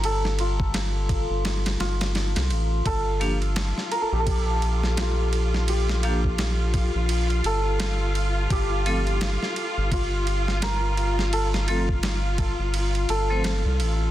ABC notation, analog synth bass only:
X:1
M:4/4
L:1/16
Q:"Swing 16ths" 1/4=85
K:Fmix
V:1 name="Analog synth bass" clef=bass
G,,,6- G,,, G,,,3 G,,,3 C,, A,,,2 | G,,,4- G,,, z2 B,,,8- B,,,- | B,,,6- B,,, B,,,3 G,,,6 | G,,,4- G,,, z2 G,,,8- G,,,- |
G,,,6- G,,, G,,,3 G,,,3 C,, A,,,2 |]